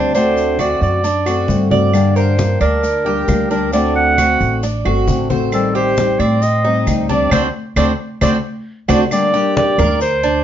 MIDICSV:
0, 0, Header, 1, 7, 480
1, 0, Start_track
1, 0, Key_signature, -2, "minor"
1, 0, Tempo, 448096
1, 159, Time_signature, 4, 2, 24, 8
1, 11182, End_track
2, 0, Start_track
2, 0, Title_t, "Clarinet"
2, 0, Program_c, 0, 71
2, 0, Note_on_c, 0, 72, 86
2, 125, Note_off_c, 0, 72, 0
2, 158, Note_on_c, 0, 72, 96
2, 605, Note_off_c, 0, 72, 0
2, 643, Note_on_c, 0, 74, 89
2, 864, Note_off_c, 0, 74, 0
2, 884, Note_on_c, 0, 74, 91
2, 1799, Note_off_c, 0, 74, 0
2, 2077, Note_on_c, 0, 74, 82
2, 2314, Note_on_c, 0, 72, 89
2, 2330, Note_off_c, 0, 74, 0
2, 2788, Note_off_c, 0, 72, 0
2, 2795, Note_on_c, 0, 70, 87
2, 3714, Note_off_c, 0, 70, 0
2, 3757, Note_on_c, 0, 70, 87
2, 3981, Note_off_c, 0, 70, 0
2, 3996, Note_on_c, 0, 74, 91
2, 4221, Note_off_c, 0, 74, 0
2, 4234, Note_on_c, 0, 78, 105
2, 4914, Note_off_c, 0, 78, 0
2, 5927, Note_on_c, 0, 69, 83
2, 6147, Note_off_c, 0, 69, 0
2, 6159, Note_on_c, 0, 72, 97
2, 6636, Note_on_c, 0, 74, 97
2, 6652, Note_off_c, 0, 72, 0
2, 6879, Note_on_c, 0, 75, 97
2, 6895, Note_off_c, 0, 74, 0
2, 7360, Note_off_c, 0, 75, 0
2, 7601, Note_on_c, 0, 74, 105
2, 7824, Note_off_c, 0, 74, 0
2, 7839, Note_on_c, 0, 74, 96
2, 7954, Note_off_c, 0, 74, 0
2, 8322, Note_on_c, 0, 74, 95
2, 8437, Note_off_c, 0, 74, 0
2, 8807, Note_on_c, 0, 74, 94
2, 8920, Note_off_c, 0, 74, 0
2, 9526, Note_on_c, 0, 74, 97
2, 9640, Note_off_c, 0, 74, 0
2, 9770, Note_on_c, 0, 74, 115
2, 10212, Note_off_c, 0, 74, 0
2, 10245, Note_on_c, 0, 74, 112
2, 10689, Note_off_c, 0, 74, 0
2, 10728, Note_on_c, 0, 72, 103
2, 11182, Note_off_c, 0, 72, 0
2, 11182, End_track
3, 0, Start_track
3, 0, Title_t, "Cuban tres"
3, 0, Program_c, 1, 25
3, 0, Note_on_c, 1, 62, 83
3, 143, Note_off_c, 1, 62, 0
3, 156, Note_on_c, 1, 62, 75
3, 623, Note_off_c, 1, 62, 0
3, 636, Note_on_c, 1, 66, 66
3, 1103, Note_off_c, 1, 66, 0
3, 1113, Note_on_c, 1, 62, 67
3, 1349, Note_off_c, 1, 62, 0
3, 1352, Note_on_c, 1, 66, 69
3, 1821, Note_off_c, 1, 66, 0
3, 1835, Note_on_c, 1, 74, 66
3, 2303, Note_off_c, 1, 74, 0
3, 2315, Note_on_c, 1, 70, 68
3, 2782, Note_off_c, 1, 70, 0
3, 2793, Note_on_c, 1, 62, 75
3, 3262, Note_off_c, 1, 62, 0
3, 3277, Note_on_c, 1, 67, 73
3, 3744, Note_off_c, 1, 67, 0
3, 3758, Note_on_c, 1, 62, 78
3, 3986, Note_off_c, 1, 62, 0
3, 3999, Note_on_c, 1, 62, 75
3, 4465, Note_off_c, 1, 62, 0
3, 4479, Note_on_c, 1, 66, 63
3, 4945, Note_off_c, 1, 66, 0
3, 4961, Note_on_c, 1, 62, 72
3, 5193, Note_off_c, 1, 62, 0
3, 5200, Note_on_c, 1, 66, 72
3, 5666, Note_off_c, 1, 66, 0
3, 5678, Note_on_c, 1, 72, 73
3, 6144, Note_off_c, 1, 72, 0
3, 6160, Note_on_c, 1, 67, 74
3, 6626, Note_off_c, 1, 67, 0
3, 6639, Note_on_c, 1, 60, 82
3, 7105, Note_off_c, 1, 60, 0
3, 7118, Note_on_c, 1, 63, 70
3, 7585, Note_off_c, 1, 63, 0
3, 7597, Note_on_c, 1, 62, 82
3, 7829, Note_off_c, 1, 62, 0
3, 7839, Note_on_c, 1, 60, 97
3, 7844, Note_on_c, 1, 62, 89
3, 7847, Note_on_c, 1, 66, 81
3, 7995, Note_off_c, 1, 60, 0
3, 7995, Note_off_c, 1, 62, 0
3, 7995, Note_off_c, 1, 66, 0
3, 8320, Note_on_c, 1, 60, 99
3, 8324, Note_on_c, 1, 62, 86
3, 8326, Note_on_c, 1, 66, 76
3, 8474, Note_off_c, 1, 66, 0
3, 8475, Note_off_c, 1, 60, 0
3, 8475, Note_off_c, 1, 62, 0
3, 8798, Note_on_c, 1, 60, 89
3, 8802, Note_on_c, 1, 62, 81
3, 8807, Note_on_c, 1, 66, 82
3, 8954, Note_off_c, 1, 60, 0
3, 8954, Note_off_c, 1, 62, 0
3, 8954, Note_off_c, 1, 66, 0
3, 9518, Note_on_c, 1, 66, 87
3, 9522, Note_on_c, 1, 62, 88
3, 9527, Note_on_c, 1, 60, 83
3, 9674, Note_off_c, 1, 60, 0
3, 9674, Note_off_c, 1, 62, 0
3, 9675, Note_off_c, 1, 66, 0
3, 10002, Note_on_c, 1, 67, 82
3, 10467, Note_off_c, 1, 67, 0
3, 10484, Note_on_c, 1, 70, 76
3, 10948, Note_off_c, 1, 70, 0
3, 10963, Note_on_c, 1, 62, 89
3, 11182, Note_off_c, 1, 62, 0
3, 11182, End_track
4, 0, Start_track
4, 0, Title_t, "Steel-string acoustic guitar"
4, 0, Program_c, 2, 25
4, 0, Note_on_c, 2, 55, 57
4, 0, Note_on_c, 2, 60, 62
4, 0, Note_on_c, 2, 67, 64
4, 147, Note_off_c, 2, 67, 0
4, 153, Note_off_c, 2, 60, 0
4, 156, Note_on_c, 2, 50, 70
4, 157, Note_off_c, 2, 55, 0
4, 167, Note_on_c, 2, 57, 80
4, 172, Note_on_c, 2, 60, 77
4, 176, Note_on_c, 2, 66, 83
4, 611, Note_off_c, 2, 50, 0
4, 621, Note_off_c, 2, 57, 0
4, 624, Note_on_c, 2, 50, 47
4, 628, Note_off_c, 2, 60, 0
4, 634, Note_off_c, 2, 66, 0
4, 634, Note_on_c, 2, 57, 52
4, 640, Note_on_c, 2, 60, 53
4, 647, Note_on_c, 2, 66, 58
4, 1102, Note_off_c, 2, 50, 0
4, 1107, Note_off_c, 2, 57, 0
4, 1110, Note_off_c, 2, 60, 0
4, 1111, Note_off_c, 2, 66, 0
4, 1347, Note_on_c, 2, 66, 72
4, 1362, Note_on_c, 2, 60, 65
4, 1372, Note_on_c, 2, 57, 50
4, 1583, Note_off_c, 2, 57, 0
4, 1583, Note_off_c, 2, 66, 0
4, 1586, Note_on_c, 2, 50, 48
4, 1588, Note_off_c, 2, 60, 0
4, 1596, Note_on_c, 2, 57, 51
4, 1600, Note_on_c, 2, 60, 46
4, 1607, Note_on_c, 2, 66, 50
4, 1812, Note_off_c, 2, 66, 0
4, 1823, Note_off_c, 2, 50, 0
4, 1824, Note_off_c, 2, 60, 0
4, 1825, Note_on_c, 2, 66, 66
4, 1828, Note_off_c, 2, 57, 0
4, 1837, Note_on_c, 2, 60, 61
4, 1846, Note_on_c, 2, 57, 53
4, 2062, Note_off_c, 2, 66, 0
4, 2067, Note_on_c, 2, 50, 68
4, 2068, Note_off_c, 2, 60, 0
4, 2073, Note_off_c, 2, 57, 0
4, 2076, Note_on_c, 2, 55, 73
4, 2082, Note_on_c, 2, 58, 71
4, 2088, Note_on_c, 2, 62, 73
4, 2092, Note_on_c, 2, 67, 75
4, 2536, Note_off_c, 2, 55, 0
4, 2541, Note_off_c, 2, 58, 0
4, 2543, Note_off_c, 2, 50, 0
4, 2548, Note_off_c, 2, 62, 0
4, 2549, Note_on_c, 2, 55, 47
4, 2554, Note_on_c, 2, 58, 47
4, 2556, Note_off_c, 2, 67, 0
4, 2561, Note_on_c, 2, 62, 53
4, 2569, Note_on_c, 2, 67, 56
4, 3018, Note_off_c, 2, 55, 0
4, 3020, Note_off_c, 2, 58, 0
4, 3022, Note_off_c, 2, 62, 0
4, 3025, Note_off_c, 2, 67, 0
4, 3265, Note_on_c, 2, 67, 68
4, 3272, Note_on_c, 2, 62, 59
4, 3280, Note_on_c, 2, 58, 56
4, 3286, Note_on_c, 2, 55, 52
4, 3495, Note_off_c, 2, 55, 0
4, 3503, Note_off_c, 2, 58, 0
4, 3503, Note_off_c, 2, 67, 0
4, 3506, Note_off_c, 2, 62, 0
4, 3508, Note_on_c, 2, 55, 52
4, 3516, Note_on_c, 2, 58, 49
4, 3523, Note_on_c, 2, 62, 54
4, 3528, Note_on_c, 2, 67, 52
4, 3733, Note_off_c, 2, 67, 0
4, 3742, Note_off_c, 2, 62, 0
4, 3744, Note_off_c, 2, 55, 0
4, 3746, Note_on_c, 2, 67, 63
4, 3748, Note_off_c, 2, 58, 0
4, 3755, Note_on_c, 2, 62, 60
4, 3761, Note_on_c, 2, 58, 55
4, 3770, Note_on_c, 2, 55, 59
4, 3983, Note_off_c, 2, 67, 0
4, 3985, Note_off_c, 2, 55, 0
4, 3988, Note_off_c, 2, 62, 0
4, 3989, Note_on_c, 2, 50, 70
4, 3991, Note_off_c, 2, 58, 0
4, 3998, Note_on_c, 2, 57, 77
4, 4007, Note_on_c, 2, 60, 75
4, 4014, Note_on_c, 2, 66, 79
4, 4465, Note_off_c, 2, 50, 0
4, 4469, Note_off_c, 2, 57, 0
4, 4473, Note_off_c, 2, 60, 0
4, 4477, Note_off_c, 2, 66, 0
4, 4477, Note_on_c, 2, 50, 50
4, 4485, Note_on_c, 2, 57, 56
4, 4492, Note_on_c, 2, 60, 57
4, 4498, Note_on_c, 2, 66, 49
4, 4946, Note_off_c, 2, 50, 0
4, 4952, Note_off_c, 2, 57, 0
4, 4954, Note_off_c, 2, 60, 0
4, 4959, Note_off_c, 2, 66, 0
4, 5197, Note_on_c, 2, 66, 70
4, 5211, Note_on_c, 2, 60, 62
4, 5219, Note_on_c, 2, 57, 57
4, 5428, Note_off_c, 2, 66, 0
4, 5433, Note_off_c, 2, 57, 0
4, 5435, Note_off_c, 2, 60, 0
4, 5440, Note_on_c, 2, 50, 46
4, 5446, Note_on_c, 2, 57, 52
4, 5455, Note_on_c, 2, 60, 55
4, 5459, Note_on_c, 2, 66, 54
4, 5664, Note_off_c, 2, 66, 0
4, 5670, Note_off_c, 2, 50, 0
4, 5673, Note_off_c, 2, 57, 0
4, 5677, Note_on_c, 2, 66, 69
4, 5678, Note_off_c, 2, 60, 0
4, 5689, Note_on_c, 2, 60, 65
4, 5700, Note_on_c, 2, 57, 60
4, 5909, Note_off_c, 2, 66, 0
4, 5915, Note_off_c, 2, 60, 0
4, 5920, Note_off_c, 2, 57, 0
4, 5921, Note_on_c, 2, 51, 76
4, 5928, Note_on_c, 2, 55, 73
4, 5934, Note_on_c, 2, 60, 74
4, 5943, Note_on_c, 2, 67, 77
4, 6386, Note_off_c, 2, 51, 0
4, 6394, Note_off_c, 2, 55, 0
4, 6397, Note_off_c, 2, 60, 0
4, 6399, Note_on_c, 2, 51, 47
4, 6402, Note_off_c, 2, 67, 0
4, 6407, Note_on_c, 2, 55, 51
4, 6415, Note_on_c, 2, 60, 52
4, 6423, Note_on_c, 2, 67, 59
4, 6866, Note_off_c, 2, 51, 0
4, 6871, Note_off_c, 2, 55, 0
4, 6876, Note_off_c, 2, 60, 0
4, 6879, Note_off_c, 2, 67, 0
4, 7119, Note_on_c, 2, 67, 63
4, 7131, Note_on_c, 2, 60, 65
4, 7142, Note_on_c, 2, 55, 56
4, 7350, Note_off_c, 2, 67, 0
4, 7351, Note_off_c, 2, 55, 0
4, 7355, Note_on_c, 2, 51, 51
4, 7356, Note_off_c, 2, 60, 0
4, 7364, Note_on_c, 2, 55, 50
4, 7374, Note_on_c, 2, 60, 51
4, 7376, Note_on_c, 2, 67, 54
4, 7585, Note_off_c, 2, 67, 0
4, 7588, Note_off_c, 2, 51, 0
4, 7593, Note_off_c, 2, 55, 0
4, 7595, Note_off_c, 2, 60, 0
4, 7597, Note_on_c, 2, 67, 67
4, 7608, Note_on_c, 2, 60, 66
4, 7619, Note_on_c, 2, 55, 56
4, 7829, Note_off_c, 2, 60, 0
4, 7830, Note_off_c, 2, 67, 0
4, 7837, Note_on_c, 2, 57, 101
4, 7838, Note_off_c, 2, 55, 0
4, 7842, Note_on_c, 2, 60, 96
4, 7844, Note_on_c, 2, 62, 93
4, 7993, Note_off_c, 2, 57, 0
4, 7995, Note_off_c, 2, 60, 0
4, 7995, Note_off_c, 2, 62, 0
4, 8318, Note_on_c, 2, 57, 98
4, 8323, Note_on_c, 2, 60, 93
4, 8325, Note_on_c, 2, 62, 96
4, 8474, Note_off_c, 2, 57, 0
4, 8474, Note_off_c, 2, 62, 0
4, 8475, Note_off_c, 2, 60, 0
4, 8802, Note_on_c, 2, 57, 89
4, 8804, Note_on_c, 2, 60, 90
4, 8810, Note_on_c, 2, 62, 90
4, 8955, Note_off_c, 2, 60, 0
4, 8955, Note_off_c, 2, 62, 0
4, 8958, Note_off_c, 2, 57, 0
4, 9514, Note_on_c, 2, 57, 96
4, 9520, Note_on_c, 2, 60, 100
4, 9522, Note_on_c, 2, 62, 95
4, 9672, Note_off_c, 2, 57, 0
4, 9673, Note_off_c, 2, 60, 0
4, 9673, Note_off_c, 2, 62, 0
4, 9754, Note_on_c, 2, 50, 75
4, 9762, Note_on_c, 2, 55, 74
4, 9766, Note_on_c, 2, 58, 80
4, 9771, Note_on_c, 2, 62, 85
4, 9775, Note_on_c, 2, 67, 86
4, 9986, Note_off_c, 2, 67, 0
4, 9988, Note_off_c, 2, 50, 0
4, 9992, Note_off_c, 2, 55, 0
4, 9993, Note_off_c, 2, 62, 0
4, 9994, Note_off_c, 2, 58, 0
4, 9999, Note_on_c, 2, 67, 76
4, 10006, Note_on_c, 2, 62, 72
4, 10015, Note_on_c, 2, 58, 65
4, 10018, Note_on_c, 2, 55, 61
4, 10709, Note_off_c, 2, 58, 0
4, 10710, Note_off_c, 2, 55, 0
4, 10710, Note_off_c, 2, 67, 0
4, 10721, Note_off_c, 2, 62, 0
4, 11182, End_track
5, 0, Start_track
5, 0, Title_t, "Upright bass"
5, 0, Program_c, 3, 32
5, 0, Note_on_c, 3, 38, 87
5, 809, Note_off_c, 3, 38, 0
5, 871, Note_on_c, 3, 42, 89
5, 1552, Note_off_c, 3, 42, 0
5, 1592, Note_on_c, 3, 43, 90
5, 2728, Note_off_c, 3, 43, 0
5, 2791, Note_on_c, 3, 38, 88
5, 3472, Note_off_c, 3, 38, 0
5, 3514, Note_on_c, 3, 38, 86
5, 4650, Note_off_c, 3, 38, 0
5, 4719, Note_on_c, 3, 33, 88
5, 5166, Note_off_c, 3, 33, 0
5, 5195, Note_on_c, 3, 31, 71
5, 5420, Note_off_c, 3, 31, 0
5, 5435, Note_on_c, 3, 33, 86
5, 6571, Note_off_c, 3, 33, 0
5, 6634, Note_on_c, 3, 45, 94
5, 7315, Note_off_c, 3, 45, 0
5, 7356, Note_on_c, 3, 38, 91
5, 7805, Note_off_c, 3, 38, 0
5, 7831, Note_on_c, 3, 38, 93
5, 8014, Note_off_c, 3, 38, 0
5, 8314, Note_on_c, 3, 38, 98
5, 8496, Note_off_c, 3, 38, 0
5, 8798, Note_on_c, 3, 38, 91
5, 8978, Note_off_c, 3, 38, 0
5, 9521, Note_on_c, 3, 38, 92
5, 9699, Note_off_c, 3, 38, 0
5, 10479, Note_on_c, 3, 38, 95
5, 11156, Note_off_c, 3, 38, 0
5, 11182, End_track
6, 0, Start_track
6, 0, Title_t, "Muted steel-string acoustic guitar strokes"
6, 1113, Note_on_c, 9, 29, 57
6, 1220, Note_off_c, 9, 29, 0
6, 3027, Note_on_c, 9, 29, 55
6, 3135, Note_off_c, 9, 29, 0
6, 4959, Note_on_c, 9, 29, 59
6, 5066, Note_off_c, 9, 29, 0
6, 6878, Note_on_c, 9, 29, 55
6, 6986, Note_off_c, 9, 29, 0
6, 10719, Note_on_c, 9, 29, 59
6, 10826, Note_off_c, 9, 29, 0
6, 11182, End_track
7, 0, Start_track
7, 0, Title_t, "Drums"
7, 154, Note_on_c, 9, 63, 33
7, 162, Note_on_c, 9, 70, 66
7, 261, Note_off_c, 9, 63, 0
7, 270, Note_off_c, 9, 70, 0
7, 392, Note_on_c, 9, 63, 36
7, 400, Note_on_c, 9, 70, 57
7, 499, Note_off_c, 9, 63, 0
7, 508, Note_off_c, 9, 70, 0
7, 631, Note_on_c, 9, 63, 53
7, 634, Note_on_c, 9, 75, 62
7, 643, Note_on_c, 9, 70, 68
7, 738, Note_off_c, 9, 63, 0
7, 742, Note_off_c, 9, 75, 0
7, 750, Note_off_c, 9, 70, 0
7, 873, Note_on_c, 9, 63, 32
7, 884, Note_on_c, 9, 70, 28
7, 980, Note_off_c, 9, 63, 0
7, 991, Note_off_c, 9, 70, 0
7, 1111, Note_on_c, 9, 63, 32
7, 1118, Note_on_c, 9, 70, 68
7, 1218, Note_off_c, 9, 63, 0
7, 1225, Note_off_c, 9, 70, 0
7, 1354, Note_on_c, 9, 63, 34
7, 1354, Note_on_c, 9, 75, 68
7, 1361, Note_on_c, 9, 70, 61
7, 1461, Note_off_c, 9, 63, 0
7, 1461, Note_off_c, 9, 75, 0
7, 1469, Note_off_c, 9, 70, 0
7, 1588, Note_on_c, 9, 63, 77
7, 1602, Note_on_c, 9, 70, 72
7, 1695, Note_off_c, 9, 63, 0
7, 1709, Note_off_c, 9, 70, 0
7, 1834, Note_on_c, 9, 63, 72
7, 1842, Note_on_c, 9, 70, 29
7, 1941, Note_off_c, 9, 63, 0
7, 1949, Note_off_c, 9, 70, 0
7, 2073, Note_on_c, 9, 75, 65
7, 2079, Note_on_c, 9, 63, 34
7, 2081, Note_on_c, 9, 70, 68
7, 2180, Note_off_c, 9, 75, 0
7, 2186, Note_off_c, 9, 63, 0
7, 2188, Note_off_c, 9, 70, 0
7, 2318, Note_on_c, 9, 63, 36
7, 2319, Note_on_c, 9, 70, 56
7, 2425, Note_off_c, 9, 63, 0
7, 2426, Note_off_c, 9, 70, 0
7, 2558, Note_on_c, 9, 63, 87
7, 2558, Note_on_c, 9, 70, 69
7, 2665, Note_off_c, 9, 63, 0
7, 2665, Note_off_c, 9, 70, 0
7, 2793, Note_on_c, 9, 75, 58
7, 2796, Note_on_c, 9, 63, 33
7, 2798, Note_on_c, 9, 70, 29
7, 2900, Note_off_c, 9, 75, 0
7, 2904, Note_off_c, 9, 63, 0
7, 2905, Note_off_c, 9, 70, 0
7, 3034, Note_on_c, 9, 63, 33
7, 3039, Note_on_c, 9, 70, 62
7, 3141, Note_off_c, 9, 63, 0
7, 3146, Note_off_c, 9, 70, 0
7, 3275, Note_on_c, 9, 63, 33
7, 3383, Note_off_c, 9, 63, 0
7, 3516, Note_on_c, 9, 63, 76
7, 3517, Note_on_c, 9, 70, 65
7, 3521, Note_on_c, 9, 75, 65
7, 3624, Note_off_c, 9, 63, 0
7, 3624, Note_off_c, 9, 70, 0
7, 3628, Note_off_c, 9, 75, 0
7, 3764, Note_on_c, 9, 70, 28
7, 3871, Note_off_c, 9, 70, 0
7, 3996, Note_on_c, 9, 70, 69
7, 4001, Note_on_c, 9, 63, 34
7, 4103, Note_off_c, 9, 70, 0
7, 4108, Note_off_c, 9, 63, 0
7, 4242, Note_on_c, 9, 63, 34
7, 4349, Note_off_c, 9, 63, 0
7, 4478, Note_on_c, 9, 63, 58
7, 4480, Note_on_c, 9, 75, 68
7, 4482, Note_on_c, 9, 70, 71
7, 4585, Note_off_c, 9, 63, 0
7, 4587, Note_off_c, 9, 75, 0
7, 4590, Note_off_c, 9, 70, 0
7, 4719, Note_on_c, 9, 63, 34
7, 4721, Note_on_c, 9, 70, 29
7, 4826, Note_off_c, 9, 63, 0
7, 4828, Note_off_c, 9, 70, 0
7, 4961, Note_on_c, 9, 63, 32
7, 4962, Note_on_c, 9, 70, 66
7, 5068, Note_off_c, 9, 63, 0
7, 5069, Note_off_c, 9, 70, 0
7, 5198, Note_on_c, 9, 63, 32
7, 5201, Note_on_c, 9, 75, 69
7, 5305, Note_off_c, 9, 63, 0
7, 5308, Note_off_c, 9, 75, 0
7, 5437, Note_on_c, 9, 63, 82
7, 5440, Note_on_c, 9, 70, 72
7, 5544, Note_off_c, 9, 63, 0
7, 5547, Note_off_c, 9, 70, 0
7, 5679, Note_on_c, 9, 70, 29
7, 5681, Note_on_c, 9, 63, 70
7, 5787, Note_off_c, 9, 70, 0
7, 5788, Note_off_c, 9, 63, 0
7, 5917, Note_on_c, 9, 70, 72
7, 5917, Note_on_c, 9, 75, 67
7, 5924, Note_on_c, 9, 63, 34
7, 6024, Note_off_c, 9, 70, 0
7, 6024, Note_off_c, 9, 75, 0
7, 6031, Note_off_c, 9, 63, 0
7, 6168, Note_on_c, 9, 63, 37
7, 6275, Note_off_c, 9, 63, 0
7, 6398, Note_on_c, 9, 70, 72
7, 6403, Note_on_c, 9, 63, 92
7, 6505, Note_off_c, 9, 70, 0
7, 6510, Note_off_c, 9, 63, 0
7, 6639, Note_on_c, 9, 75, 61
7, 6641, Note_on_c, 9, 70, 29
7, 6643, Note_on_c, 9, 63, 32
7, 6747, Note_off_c, 9, 75, 0
7, 6748, Note_off_c, 9, 70, 0
7, 6750, Note_off_c, 9, 63, 0
7, 6881, Note_on_c, 9, 70, 65
7, 6886, Note_on_c, 9, 63, 32
7, 6988, Note_off_c, 9, 70, 0
7, 6993, Note_off_c, 9, 63, 0
7, 7126, Note_on_c, 9, 63, 34
7, 7233, Note_off_c, 9, 63, 0
7, 7360, Note_on_c, 9, 75, 65
7, 7361, Note_on_c, 9, 70, 73
7, 7363, Note_on_c, 9, 63, 78
7, 7468, Note_off_c, 9, 75, 0
7, 7469, Note_off_c, 9, 70, 0
7, 7470, Note_off_c, 9, 63, 0
7, 7599, Note_on_c, 9, 63, 69
7, 7603, Note_on_c, 9, 70, 29
7, 7706, Note_off_c, 9, 63, 0
7, 7710, Note_off_c, 9, 70, 0
7, 7835, Note_on_c, 9, 75, 97
7, 7842, Note_on_c, 9, 70, 95
7, 7844, Note_on_c, 9, 63, 94
7, 7942, Note_off_c, 9, 75, 0
7, 7949, Note_off_c, 9, 70, 0
7, 7952, Note_off_c, 9, 63, 0
7, 8317, Note_on_c, 9, 75, 97
7, 8322, Note_on_c, 9, 63, 92
7, 8322, Note_on_c, 9, 70, 94
7, 8424, Note_off_c, 9, 75, 0
7, 8429, Note_off_c, 9, 63, 0
7, 8429, Note_off_c, 9, 70, 0
7, 8798, Note_on_c, 9, 75, 92
7, 8804, Note_on_c, 9, 63, 97
7, 8806, Note_on_c, 9, 70, 91
7, 8905, Note_off_c, 9, 75, 0
7, 8911, Note_off_c, 9, 63, 0
7, 8913, Note_off_c, 9, 70, 0
7, 9521, Note_on_c, 9, 75, 95
7, 9527, Note_on_c, 9, 63, 97
7, 9528, Note_on_c, 9, 70, 95
7, 9628, Note_off_c, 9, 75, 0
7, 9634, Note_off_c, 9, 63, 0
7, 9635, Note_off_c, 9, 70, 0
7, 9761, Note_on_c, 9, 75, 68
7, 9766, Note_on_c, 9, 70, 89
7, 9771, Note_on_c, 9, 63, 37
7, 9868, Note_off_c, 9, 75, 0
7, 9873, Note_off_c, 9, 70, 0
7, 9878, Note_off_c, 9, 63, 0
7, 10009, Note_on_c, 9, 70, 28
7, 10015, Note_on_c, 9, 63, 38
7, 10116, Note_off_c, 9, 70, 0
7, 10122, Note_off_c, 9, 63, 0
7, 10250, Note_on_c, 9, 63, 97
7, 10254, Note_on_c, 9, 70, 30
7, 10357, Note_off_c, 9, 63, 0
7, 10361, Note_off_c, 9, 70, 0
7, 10483, Note_on_c, 9, 75, 65
7, 10486, Note_on_c, 9, 70, 76
7, 10490, Note_on_c, 9, 63, 34
7, 10490, Note_on_c, 9, 64, 87
7, 10590, Note_off_c, 9, 75, 0
7, 10593, Note_off_c, 9, 70, 0
7, 10597, Note_off_c, 9, 63, 0
7, 10597, Note_off_c, 9, 64, 0
7, 10722, Note_on_c, 9, 70, 87
7, 10731, Note_on_c, 9, 63, 34
7, 10829, Note_off_c, 9, 70, 0
7, 10838, Note_off_c, 9, 63, 0
7, 10964, Note_on_c, 9, 70, 29
7, 10971, Note_on_c, 9, 63, 35
7, 11071, Note_off_c, 9, 70, 0
7, 11078, Note_off_c, 9, 63, 0
7, 11182, End_track
0, 0, End_of_file